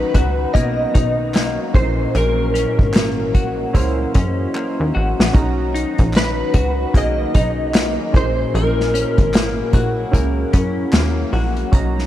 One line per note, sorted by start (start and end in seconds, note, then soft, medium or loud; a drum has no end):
0.00 1.72 D#3 medium
0.00 1.70 F#3 medium
0.00 0.55 A#3 medium
0.00 0.22 C#4 medium
0.00 0.22 D#4 medium
0.00 0.93 D#4 medium
0.00 1.72 D#4 medium
0.00 0.15 F#4 medium
0.00 0.22 F#4 medium
0.00 12.06 F#4 medium
0.00 0.53 B4 medium
0.00 0.23 A#5 loud
0.14 0.46 C#2 medium
0.14 3.34 F#4 medium
0.14 kick loud
0.14 closed hi-hat medium
0.53 0.87 B1 medium
0.53 1.35 A#3 medium
0.53 1.75 B3 medium
0.53 1.72 C#4 medium
0.53 1.74 D#4 medium
0.53 1.75 F#4 medium
0.53 1.75 D#5 loud
0.53 kick medium
0.53 closed hi-hat loud
0.94 1.59 B1 medium
0.94 1.84 D#4 medium
0.94 kick loud
0.94 closed hi-hat medium
1.34 2.95 A#3 medium
1.34 snare loud
1.34 clap loud
1.34 closed hi-hat medium
1.74 2.06 A#1 loud
1.74 2.14 A#2 medium
1.74 5.32 E3 medium
1.74 5.32 F#3 medium
1.74 3.03 C#4 medium
1.74 3.34 C#4 medium
1.74 3.04 E4 medium
1.74 3.04 G#4 medium
1.74 3.04 A#4 medium
1.74 2.16 C5 medium
1.74 kick loud
1.74 closed hi-hat medium
2.15 2.66 A#1 loud
2.15 5.34 A#2 medium
2.15 4.51 A#4 medium
2.15 closed hi-hat medium
2.54 4.14 C#4 medium
2.54 closed hi-hat medium
2.79 3.36 G#1 medium
2.79 kick medium
2.94 3.74 A#3 medium
2.94 snare loud
2.94 clap medium
2.94 closed hi-hat medium
3.35 3.66 A#1 loud
3.35 4.94 F#4 medium
3.35 5.32 D#5 medium
3.35 kick medium
3.35 closed hi-hat medium
3.74 4.06 C#2 medium
3.74 4.54 A#3 medium
3.74 5.01 C#4 medium
3.74 5.01 E4 medium
3.74 5.02 G#4 medium
3.74 5.02 C5 medium
3.74 kick medium
3.74 closed hi-hat loud
4.14 4.47 F#2 medium
4.14 5.44 C#4 medium
4.14 kick loud
4.14 closed hi-hat medium
4.55 6.95 A#3 medium
4.55 clap medium
4.80 4.92 D#2 loud
4.95 5.14 A1 loud
4.95 6.55 F#4 medium
5.20 5.32 A#1 medium
5.20 snare loud
5.33 5.86 B1 loud
5.33 8.12 D#3 medium
5.33 12.06 F#3 medium
5.33 6.61 C#4 medium
5.33 6.61 D#4 medium
5.33 8.12 D#4 medium
5.33 6.61 F#4 medium
5.33 6.62 A#5 medium
5.33 kick loud
5.33 closed hi-hat medium
5.75 7.34 D#4 medium
5.75 closed hi-hat medium
5.98 6.43 A#1 loud
5.98 kick medium
5.98 closed hi-hat medium
6.14 6.97 B4 medium
6.14 snare loud
6.14 clap medium
6.14 closed hi-hat medium
6.54 6.86 C#2 medium
6.54 9.74 F#4 medium
6.54 kick medium
6.54 closed hi-hat medium
6.93 7.26 B1 loud
6.93 7.74 A#3 medium
6.93 8.11 C#4 medium
6.93 8.14 D#4 medium
6.93 8.14 F#4 medium
6.93 8.13 G#4 medium
6.93 kick loud
6.93 closed hi-hat loud
6.97 8.16 D#5 loud
7.34 7.98 B1 medium
7.34 8.24 D#4 medium
7.34 kick loud
7.34 closed hi-hat loud
7.74 9.34 A#3 medium
7.74 snare loud
7.74 clap medium
7.74 closed hi-hat medium
8.13 8.46 A#1 medium
8.13 8.53 A#2 medium
8.13 9.43 C#4 medium
8.13 11.70 C#4 medium
8.13 11.69 E4 medium
8.13 9.43 E4 medium
8.13 9.43 G#4 medium
8.13 9.44 A#4 medium
8.13 8.56 C5 medium
8.13 kick loud
8.13 closed hi-hat medium
8.54 9.05 A#1 loud
8.54 11.74 A#2 medium
8.54 10.90 A#4 medium
8.54 closed hi-hat medium
8.80 snare soft
8.94 10.52 C#4 medium
8.94 closed hi-hat medium
9.18 9.63 G#1 medium
9.18 kick medium
9.18 closed hi-hat medium
9.34 10.14 A#3 medium
9.34 snare loud
9.34 clap loud
9.34 closed hi-hat medium
9.73 10.05 A#1 loud
9.73 11.33 F#4 medium
9.73 kick loud
9.73 closed hi-hat medium
10.11 10.45 C#2 loud
10.11 10.92 A#3 medium
10.11 11.39 C#4 medium
10.11 11.40 E4 medium
10.11 11.41 G#4 medium
10.11 11.41 A#4 loud
10.11 kick medium
10.11 closed hi-hat medium
10.53 10.86 F#2 loud
10.53 11.83 C#4 medium
10.53 kick loud
10.53 closed hi-hat loud
10.93 11.25 D#2 loud
10.93 12.06 A#3 medium
10.93 snare loud
10.93 clap loud
10.93 closed hi-hat medium
11.33 11.65 A#1 loud
11.33 12.06 F#4 medium
11.33 open hi-hat soft
11.57 closed hi-hat medium
11.72 12.06 B1 loud
11.72 12.06 C#4 medium
11.72 12.06 D#4 medium
11.72 12.06 F#4 medium
11.72 12.06 A#5 loud
11.72 kick loud
11.72 closed hi-hat medium
11.99 snare soft